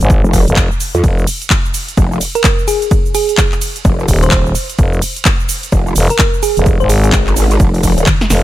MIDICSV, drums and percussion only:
0, 0, Header, 1, 2, 480
1, 0, Start_track
1, 0, Key_signature, -4, "minor"
1, 0, Tempo, 468750
1, 1062, Time_signature, 4, 2, 24, 8
1, 8633, End_track
2, 0, Start_track
2, 0, Title_t, "Drums"
2, 10, Note_on_c, 9, 42, 60
2, 11, Note_on_c, 9, 69, 32
2, 102, Note_on_c, 9, 36, 122
2, 103, Note_off_c, 9, 42, 0
2, 103, Note_off_c, 9, 69, 0
2, 103, Note_on_c, 9, 42, 49
2, 103, Note_on_c, 9, 69, 44
2, 204, Note_off_c, 9, 36, 0
2, 205, Note_off_c, 9, 42, 0
2, 206, Note_off_c, 9, 69, 0
2, 251, Note_on_c, 9, 69, 22
2, 342, Note_on_c, 9, 36, 65
2, 343, Note_off_c, 9, 69, 0
2, 343, Note_on_c, 9, 46, 111
2, 343, Note_on_c, 9, 69, 74
2, 444, Note_off_c, 9, 36, 0
2, 445, Note_off_c, 9, 46, 0
2, 446, Note_off_c, 9, 69, 0
2, 489, Note_on_c, 9, 42, 63
2, 490, Note_on_c, 9, 69, 32
2, 577, Note_on_c, 9, 39, 119
2, 582, Note_off_c, 9, 42, 0
2, 582, Note_on_c, 9, 36, 122
2, 582, Note_on_c, 9, 42, 51
2, 583, Note_off_c, 9, 69, 0
2, 583, Note_on_c, 9, 69, 44
2, 680, Note_off_c, 9, 39, 0
2, 684, Note_off_c, 9, 36, 0
2, 685, Note_off_c, 9, 42, 0
2, 685, Note_off_c, 9, 69, 0
2, 731, Note_on_c, 9, 69, 22
2, 823, Note_on_c, 9, 46, 109
2, 824, Note_off_c, 9, 69, 0
2, 824, Note_on_c, 9, 69, 76
2, 925, Note_off_c, 9, 46, 0
2, 926, Note_off_c, 9, 69, 0
2, 970, Note_on_c, 9, 42, 61
2, 971, Note_on_c, 9, 69, 32
2, 1062, Note_on_c, 9, 36, 115
2, 1063, Note_off_c, 9, 42, 0
2, 1063, Note_on_c, 9, 42, 53
2, 1063, Note_on_c, 9, 51, 61
2, 1064, Note_off_c, 9, 69, 0
2, 1064, Note_on_c, 9, 69, 45
2, 1164, Note_off_c, 9, 36, 0
2, 1166, Note_off_c, 9, 42, 0
2, 1166, Note_off_c, 9, 51, 0
2, 1166, Note_off_c, 9, 69, 0
2, 1211, Note_on_c, 9, 69, 23
2, 1303, Note_on_c, 9, 46, 106
2, 1303, Note_on_c, 9, 51, 85
2, 1304, Note_off_c, 9, 69, 0
2, 1304, Note_on_c, 9, 69, 79
2, 1406, Note_off_c, 9, 46, 0
2, 1406, Note_off_c, 9, 51, 0
2, 1406, Note_off_c, 9, 69, 0
2, 1450, Note_on_c, 9, 42, 65
2, 1451, Note_on_c, 9, 69, 35
2, 1538, Note_on_c, 9, 39, 116
2, 1542, Note_on_c, 9, 36, 113
2, 1543, Note_off_c, 9, 42, 0
2, 1543, Note_on_c, 9, 42, 51
2, 1543, Note_on_c, 9, 51, 58
2, 1544, Note_off_c, 9, 69, 0
2, 1544, Note_on_c, 9, 69, 45
2, 1640, Note_off_c, 9, 39, 0
2, 1644, Note_off_c, 9, 36, 0
2, 1646, Note_off_c, 9, 42, 0
2, 1646, Note_off_c, 9, 51, 0
2, 1646, Note_off_c, 9, 69, 0
2, 1690, Note_on_c, 9, 69, 23
2, 1783, Note_on_c, 9, 46, 110
2, 1783, Note_on_c, 9, 51, 85
2, 1784, Note_off_c, 9, 69, 0
2, 1784, Note_on_c, 9, 69, 81
2, 1885, Note_off_c, 9, 46, 0
2, 1885, Note_off_c, 9, 51, 0
2, 1886, Note_off_c, 9, 69, 0
2, 1930, Note_on_c, 9, 42, 62
2, 1930, Note_on_c, 9, 69, 33
2, 2022, Note_off_c, 9, 42, 0
2, 2022, Note_on_c, 9, 36, 119
2, 2022, Note_on_c, 9, 42, 52
2, 2022, Note_on_c, 9, 51, 59
2, 2023, Note_off_c, 9, 69, 0
2, 2023, Note_on_c, 9, 69, 46
2, 2124, Note_off_c, 9, 36, 0
2, 2125, Note_off_c, 9, 42, 0
2, 2125, Note_off_c, 9, 51, 0
2, 2125, Note_off_c, 9, 69, 0
2, 2170, Note_on_c, 9, 69, 23
2, 2262, Note_on_c, 9, 46, 106
2, 2262, Note_on_c, 9, 51, 83
2, 2263, Note_off_c, 9, 69, 0
2, 2263, Note_on_c, 9, 69, 80
2, 2365, Note_off_c, 9, 46, 0
2, 2365, Note_off_c, 9, 51, 0
2, 2365, Note_off_c, 9, 69, 0
2, 2410, Note_on_c, 9, 42, 64
2, 2410, Note_on_c, 9, 69, 33
2, 2497, Note_on_c, 9, 39, 113
2, 2502, Note_off_c, 9, 42, 0
2, 2502, Note_on_c, 9, 36, 122
2, 2502, Note_on_c, 9, 42, 52
2, 2502, Note_on_c, 9, 51, 58
2, 2503, Note_off_c, 9, 69, 0
2, 2503, Note_on_c, 9, 69, 44
2, 2600, Note_off_c, 9, 39, 0
2, 2604, Note_off_c, 9, 36, 0
2, 2605, Note_off_c, 9, 42, 0
2, 2605, Note_off_c, 9, 51, 0
2, 2605, Note_off_c, 9, 69, 0
2, 2650, Note_on_c, 9, 69, 23
2, 2742, Note_off_c, 9, 69, 0
2, 2742, Note_on_c, 9, 46, 104
2, 2742, Note_on_c, 9, 51, 82
2, 2742, Note_on_c, 9, 69, 77
2, 2844, Note_off_c, 9, 46, 0
2, 2844, Note_off_c, 9, 51, 0
2, 2845, Note_off_c, 9, 69, 0
2, 2889, Note_on_c, 9, 42, 64
2, 2890, Note_on_c, 9, 69, 33
2, 2982, Note_off_c, 9, 42, 0
2, 2982, Note_off_c, 9, 69, 0
2, 2982, Note_on_c, 9, 36, 114
2, 2982, Note_on_c, 9, 42, 54
2, 2982, Note_on_c, 9, 51, 62
2, 2982, Note_on_c, 9, 69, 48
2, 3084, Note_off_c, 9, 36, 0
2, 3084, Note_off_c, 9, 42, 0
2, 3084, Note_off_c, 9, 51, 0
2, 3085, Note_off_c, 9, 69, 0
2, 3130, Note_on_c, 9, 69, 24
2, 3221, Note_on_c, 9, 46, 102
2, 3221, Note_on_c, 9, 51, 86
2, 3222, Note_off_c, 9, 69, 0
2, 3222, Note_on_c, 9, 69, 85
2, 3323, Note_off_c, 9, 46, 0
2, 3323, Note_off_c, 9, 51, 0
2, 3324, Note_off_c, 9, 69, 0
2, 3369, Note_on_c, 9, 42, 67
2, 3370, Note_on_c, 9, 69, 35
2, 3456, Note_on_c, 9, 39, 117
2, 3461, Note_off_c, 9, 42, 0
2, 3461, Note_on_c, 9, 42, 53
2, 3461, Note_on_c, 9, 51, 59
2, 3462, Note_off_c, 9, 69, 0
2, 3462, Note_on_c, 9, 36, 112
2, 3462, Note_on_c, 9, 69, 46
2, 3559, Note_off_c, 9, 39, 0
2, 3564, Note_off_c, 9, 36, 0
2, 3564, Note_off_c, 9, 42, 0
2, 3564, Note_off_c, 9, 51, 0
2, 3564, Note_off_c, 9, 69, 0
2, 3604, Note_on_c, 9, 39, 35
2, 3610, Note_on_c, 9, 69, 23
2, 3701, Note_on_c, 9, 46, 107
2, 3701, Note_on_c, 9, 51, 86
2, 3702, Note_off_c, 9, 69, 0
2, 3702, Note_on_c, 9, 69, 85
2, 3706, Note_off_c, 9, 39, 0
2, 3804, Note_off_c, 9, 46, 0
2, 3804, Note_off_c, 9, 51, 0
2, 3804, Note_off_c, 9, 69, 0
2, 3849, Note_on_c, 9, 42, 65
2, 3849, Note_on_c, 9, 69, 34
2, 3941, Note_off_c, 9, 42, 0
2, 3941, Note_on_c, 9, 42, 52
2, 3941, Note_on_c, 9, 51, 61
2, 3942, Note_off_c, 9, 69, 0
2, 3942, Note_on_c, 9, 36, 114
2, 3942, Note_on_c, 9, 69, 47
2, 4044, Note_off_c, 9, 36, 0
2, 4044, Note_off_c, 9, 42, 0
2, 4044, Note_off_c, 9, 51, 0
2, 4044, Note_off_c, 9, 69, 0
2, 4090, Note_on_c, 9, 69, 24
2, 4182, Note_off_c, 9, 69, 0
2, 4182, Note_on_c, 9, 36, 58
2, 4182, Note_on_c, 9, 46, 103
2, 4182, Note_on_c, 9, 51, 81
2, 4182, Note_on_c, 9, 69, 84
2, 4284, Note_off_c, 9, 36, 0
2, 4284, Note_off_c, 9, 46, 0
2, 4284, Note_off_c, 9, 51, 0
2, 4284, Note_off_c, 9, 69, 0
2, 4328, Note_on_c, 9, 42, 67
2, 4329, Note_on_c, 9, 69, 35
2, 4415, Note_on_c, 9, 39, 116
2, 4421, Note_off_c, 9, 42, 0
2, 4421, Note_off_c, 9, 69, 0
2, 4421, Note_on_c, 9, 36, 113
2, 4421, Note_on_c, 9, 42, 54
2, 4421, Note_on_c, 9, 51, 59
2, 4421, Note_on_c, 9, 69, 47
2, 4518, Note_off_c, 9, 39, 0
2, 4523, Note_off_c, 9, 42, 0
2, 4523, Note_off_c, 9, 51, 0
2, 4524, Note_off_c, 9, 36, 0
2, 4524, Note_off_c, 9, 69, 0
2, 4568, Note_on_c, 9, 69, 24
2, 4660, Note_on_c, 9, 46, 100
2, 4660, Note_on_c, 9, 51, 83
2, 4661, Note_off_c, 9, 69, 0
2, 4661, Note_on_c, 9, 69, 81
2, 4763, Note_off_c, 9, 46, 0
2, 4763, Note_off_c, 9, 51, 0
2, 4763, Note_off_c, 9, 69, 0
2, 4808, Note_on_c, 9, 42, 66
2, 4809, Note_on_c, 9, 69, 36
2, 4901, Note_off_c, 9, 42, 0
2, 4901, Note_off_c, 9, 69, 0
2, 4901, Note_on_c, 9, 36, 112
2, 4901, Note_on_c, 9, 42, 57
2, 4901, Note_on_c, 9, 51, 59
2, 4901, Note_on_c, 9, 69, 48
2, 5003, Note_off_c, 9, 42, 0
2, 5003, Note_off_c, 9, 51, 0
2, 5003, Note_off_c, 9, 69, 0
2, 5004, Note_off_c, 9, 36, 0
2, 5048, Note_on_c, 9, 69, 25
2, 5141, Note_off_c, 9, 69, 0
2, 5141, Note_on_c, 9, 46, 102
2, 5141, Note_on_c, 9, 51, 84
2, 5141, Note_on_c, 9, 69, 85
2, 5243, Note_off_c, 9, 46, 0
2, 5243, Note_off_c, 9, 51, 0
2, 5244, Note_off_c, 9, 69, 0
2, 5289, Note_on_c, 9, 42, 71
2, 5289, Note_on_c, 9, 69, 36
2, 5377, Note_on_c, 9, 39, 117
2, 5381, Note_on_c, 9, 36, 112
2, 5382, Note_off_c, 9, 42, 0
2, 5382, Note_off_c, 9, 69, 0
2, 5382, Note_on_c, 9, 42, 55
2, 5382, Note_on_c, 9, 51, 58
2, 5382, Note_on_c, 9, 69, 47
2, 5479, Note_off_c, 9, 39, 0
2, 5484, Note_off_c, 9, 36, 0
2, 5484, Note_off_c, 9, 42, 0
2, 5484, Note_off_c, 9, 51, 0
2, 5485, Note_off_c, 9, 69, 0
2, 5529, Note_on_c, 9, 69, 23
2, 5620, Note_on_c, 9, 46, 105
2, 5620, Note_on_c, 9, 51, 84
2, 5621, Note_off_c, 9, 69, 0
2, 5621, Note_on_c, 9, 69, 86
2, 5723, Note_off_c, 9, 46, 0
2, 5723, Note_off_c, 9, 51, 0
2, 5723, Note_off_c, 9, 69, 0
2, 5768, Note_on_c, 9, 42, 68
2, 5768, Note_on_c, 9, 69, 34
2, 5860, Note_off_c, 9, 42, 0
2, 5860, Note_on_c, 9, 42, 55
2, 5860, Note_on_c, 9, 51, 59
2, 5861, Note_off_c, 9, 69, 0
2, 5861, Note_on_c, 9, 36, 115
2, 5861, Note_on_c, 9, 69, 49
2, 5963, Note_off_c, 9, 36, 0
2, 5963, Note_off_c, 9, 42, 0
2, 5963, Note_off_c, 9, 51, 0
2, 5963, Note_off_c, 9, 69, 0
2, 6009, Note_on_c, 9, 69, 24
2, 6100, Note_on_c, 9, 46, 102
2, 6100, Note_on_c, 9, 51, 80
2, 6101, Note_off_c, 9, 69, 0
2, 6101, Note_on_c, 9, 69, 83
2, 6203, Note_off_c, 9, 46, 0
2, 6203, Note_off_c, 9, 51, 0
2, 6203, Note_off_c, 9, 69, 0
2, 6248, Note_on_c, 9, 42, 68
2, 6248, Note_on_c, 9, 69, 35
2, 6335, Note_on_c, 9, 39, 120
2, 6341, Note_off_c, 9, 42, 0
2, 6341, Note_off_c, 9, 69, 0
2, 6341, Note_on_c, 9, 36, 116
2, 6341, Note_on_c, 9, 42, 55
2, 6341, Note_on_c, 9, 51, 58
2, 6341, Note_on_c, 9, 69, 48
2, 6438, Note_off_c, 9, 39, 0
2, 6443, Note_off_c, 9, 36, 0
2, 6443, Note_off_c, 9, 42, 0
2, 6443, Note_off_c, 9, 51, 0
2, 6444, Note_off_c, 9, 69, 0
2, 6489, Note_on_c, 9, 69, 24
2, 6581, Note_on_c, 9, 46, 99
2, 6581, Note_on_c, 9, 51, 80
2, 6582, Note_off_c, 9, 69, 0
2, 6582, Note_on_c, 9, 69, 81
2, 6684, Note_off_c, 9, 46, 0
2, 6684, Note_off_c, 9, 51, 0
2, 6684, Note_off_c, 9, 69, 0
2, 6728, Note_on_c, 9, 42, 69
2, 6729, Note_on_c, 9, 69, 36
2, 6821, Note_off_c, 9, 42, 0
2, 6821, Note_off_c, 9, 69, 0
2, 6821, Note_on_c, 9, 36, 116
2, 6821, Note_on_c, 9, 42, 58
2, 6821, Note_on_c, 9, 51, 58
2, 6821, Note_on_c, 9, 69, 47
2, 6923, Note_off_c, 9, 42, 0
2, 6923, Note_off_c, 9, 51, 0
2, 6924, Note_off_c, 9, 36, 0
2, 6924, Note_off_c, 9, 69, 0
2, 6969, Note_on_c, 9, 69, 24
2, 7061, Note_off_c, 9, 69, 0
2, 7061, Note_on_c, 9, 46, 104
2, 7061, Note_on_c, 9, 51, 78
2, 7061, Note_on_c, 9, 69, 84
2, 7163, Note_off_c, 9, 46, 0
2, 7163, Note_off_c, 9, 51, 0
2, 7164, Note_off_c, 9, 69, 0
2, 7208, Note_on_c, 9, 42, 72
2, 7208, Note_on_c, 9, 69, 35
2, 7296, Note_on_c, 9, 39, 118
2, 7301, Note_off_c, 9, 42, 0
2, 7301, Note_on_c, 9, 36, 115
2, 7301, Note_on_c, 9, 42, 55
2, 7301, Note_on_c, 9, 51, 55
2, 7302, Note_off_c, 9, 69, 0
2, 7302, Note_on_c, 9, 69, 47
2, 7398, Note_off_c, 9, 39, 0
2, 7404, Note_off_c, 9, 36, 0
2, 7404, Note_off_c, 9, 42, 0
2, 7404, Note_off_c, 9, 51, 0
2, 7404, Note_off_c, 9, 69, 0
2, 7444, Note_on_c, 9, 39, 38
2, 7449, Note_on_c, 9, 69, 24
2, 7541, Note_on_c, 9, 46, 106
2, 7541, Note_on_c, 9, 51, 82
2, 7542, Note_off_c, 9, 69, 0
2, 7542, Note_on_c, 9, 69, 86
2, 7546, Note_off_c, 9, 39, 0
2, 7644, Note_off_c, 9, 46, 0
2, 7644, Note_off_c, 9, 51, 0
2, 7644, Note_off_c, 9, 69, 0
2, 7689, Note_on_c, 9, 42, 71
2, 7689, Note_on_c, 9, 69, 35
2, 7781, Note_off_c, 9, 42, 0
2, 7781, Note_on_c, 9, 36, 115
2, 7781, Note_on_c, 9, 42, 56
2, 7781, Note_on_c, 9, 51, 58
2, 7782, Note_off_c, 9, 69, 0
2, 7782, Note_on_c, 9, 69, 47
2, 7884, Note_off_c, 9, 36, 0
2, 7884, Note_off_c, 9, 42, 0
2, 7884, Note_off_c, 9, 51, 0
2, 7884, Note_off_c, 9, 69, 0
2, 7928, Note_on_c, 9, 46, 61
2, 7929, Note_on_c, 9, 69, 24
2, 8022, Note_off_c, 9, 46, 0
2, 8022, Note_off_c, 9, 69, 0
2, 8022, Note_on_c, 9, 36, 61
2, 8022, Note_on_c, 9, 46, 103
2, 8022, Note_on_c, 9, 51, 75
2, 8022, Note_on_c, 9, 69, 83
2, 8124, Note_off_c, 9, 36, 0
2, 8124, Note_off_c, 9, 46, 0
2, 8124, Note_off_c, 9, 51, 0
2, 8125, Note_off_c, 9, 69, 0
2, 8169, Note_on_c, 9, 42, 71
2, 8169, Note_on_c, 9, 69, 36
2, 8256, Note_on_c, 9, 39, 121
2, 8261, Note_on_c, 9, 36, 118
2, 8262, Note_off_c, 9, 42, 0
2, 8262, Note_off_c, 9, 69, 0
2, 8262, Note_on_c, 9, 42, 55
2, 8262, Note_on_c, 9, 48, 61
2, 8262, Note_on_c, 9, 51, 56
2, 8262, Note_on_c, 9, 69, 47
2, 8359, Note_off_c, 9, 39, 0
2, 8364, Note_off_c, 9, 36, 0
2, 8364, Note_off_c, 9, 42, 0
2, 8364, Note_off_c, 9, 48, 0
2, 8364, Note_off_c, 9, 51, 0
2, 8364, Note_off_c, 9, 69, 0
2, 8409, Note_on_c, 9, 38, 64
2, 8410, Note_on_c, 9, 69, 24
2, 8502, Note_off_c, 9, 38, 0
2, 8502, Note_on_c, 9, 38, 84
2, 8502, Note_on_c, 9, 46, 100
2, 8502, Note_on_c, 9, 51, 76
2, 8503, Note_off_c, 9, 69, 0
2, 8503, Note_on_c, 9, 69, 81
2, 8604, Note_off_c, 9, 38, 0
2, 8604, Note_off_c, 9, 46, 0
2, 8604, Note_off_c, 9, 51, 0
2, 8605, Note_off_c, 9, 69, 0
2, 8633, End_track
0, 0, End_of_file